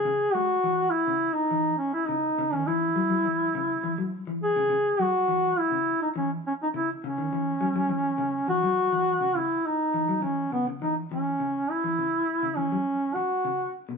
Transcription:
X:1
M:4/4
L:1/16
Q:1/4=103
K:C#m
V:1 name="Duduk"
G2 F4 E3 D3 C E D2- | D C E8- E2 z2 G2- | G2 F4 E3 D C2 C D E2 | C8- C2 F6 |
E2 D4 C2 B,2 D2 C4 | E6 C4 F4 z2 |]
V:2 name="Clean electric guitar" clef=bass
C,2 G,2 E,2 z C,2 z E,2 z2 C,2 | C, D, E,2 F, F, E,2 C,2 E, F,2 E,2 C, | C,2 F,2 E,2 z C,2 z E,2 z2 C,2 | C, D, E,2 F, F, E,2 C,2 E, F,2 E,2 C, |
C,2 z2 E, F, E,2 C, C, E,2 E,2 C,2 | z E, C,2 z C, E, F,2 z3 C,2 z B,, |]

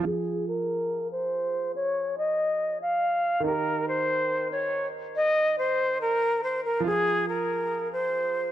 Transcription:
X:1
M:4/4
L:1/8
Q:1/4=141
K:Fm
V:1 name="Flute"
A2 B3 c3 | d2 e3 f3 | B2 c3 d3 | e2 c2 B2 c B |
A2 B3 c3 |]
V:2 name="Grand piano"
[F,FA]8- | [F,FA]8 | [E,EGB]8- | [E,EGB]8 |
[F,FA]8 |]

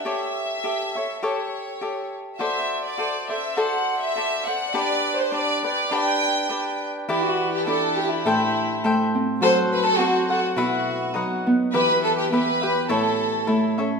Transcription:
X:1
M:2/4
L:1/16
Q:"Swing" 1/4=103
K:G
V:1 name="Cavaquinho"
[GA^ce]4 [GAce]2 [Ace]2 | [GA^ce]4 [GAce]4 | [FAcd]4 [FAcd]2 [Acd]2 | [FAcd]4 [FAcd]2 [Acd]2 |
[DGBd]4 [DGBd]2 [GBd]2 | [DGBd]4 [DGBd]4 | [K:Em] [EGBd]4 [EGBd]4 | [Aceg]4 [Aceg]4 |
[FAcf]4 [FAcf]2 [Acf]2 | [EBef]4 [^DB^df]4 | [EGBe]4 [EGBe]2 [GBe]2 | [EA^ce]4 [EAce]2 [Ace]2 |]
V:2 name="Violin section"
e8 | ^c6 z2 | e3 d3 e2 | f3 e3 f2 |
d3 c d2 d2 | g6 z2 | [K:Em] E F2 G A2 G E- | E4- E z3 |
c2 B A F2 F2 | F6 z2 | B2 A G B4 | A6 z2 |]
V:3 name="Harp"
z8 | z8 | z8 | z8 |
z8 | z8 | [K:Em] E,2 z2 D2 G2 | A,,2 z2 A,2 C2 |
F,2 z2 C2 A2 | B,,2 z2 F,2 B,2 | E,2 z2 B,2 G2 | A,,2 z2 A,2 ^C2 |]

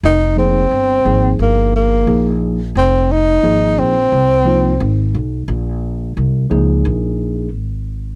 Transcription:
X:1
M:4/4
L:1/8
Q:"Swing 16ths" 1/4=88
K:Fm
V:1 name="Tine electric piano"
z [F,B,EA] z [F,B,EA]3 [F,B,EA] z | z2 [F,B,EA] z2 [F,B,EF] z2 | z3 [F,B,EA]3 z2 |]
V:2 name="Tenor saxophone"
E C3 B, B,2 z | C E2 C4 z | z8 |]
V:3 name="Upright bass" clef=bass
F,,,2 G,,, A,,, G,,,2 B,,,2 | F,,,2 A,,, B,,, C,,2 A,,, =B,,, | B,,,2 C,, D,, B,,,2 A,,,2 |]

